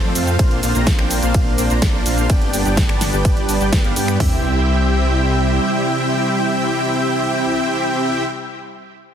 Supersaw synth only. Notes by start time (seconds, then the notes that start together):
0.03 A3 C4 F4 C5 D5
0.15 A3 C4 F4 C5 F5
0.39 A#3 D4 F4 C5 F5
0.63 A#3 D4 F4 C5 F5
0.75 A#3 D4 F4 C5 A#5
0.99 A#3 D4 F4 C5 G5
1.23 A#3 D4 F4 C5 F5
1.34 A#3 D4 F4 C5 F5
1.58 A#3 D4 F4 C5 G5
1.70 A#3 D4 F4 C5 A#5
1.82 A#3 D4 F4 C5 A#5
1.94 A#3 D4 F4 C5 D5
2.06 A#3 D4 F4 C5 F5
2.30 B3 D4 G4 D5 G5
2.53 B3 D4 G4 D5 G5
2.65 B3 D4 G4 D5 G5
2.89 B3 D4 G4 D5 A5
3.13 B3 D4 G4 D5 G5
3.25 B3 D4 G4 D5 G5
3.49 B3 D4 G4 D5 A5
3.61 B3 D4 G4 D5 G5
3.72 B3 D4 G4 D5 G5
3.84 B3 D4 G4 D5 F5
3.96 B3 D4 G4 D5 G5
4.20 C4 E4 G4 E5 G5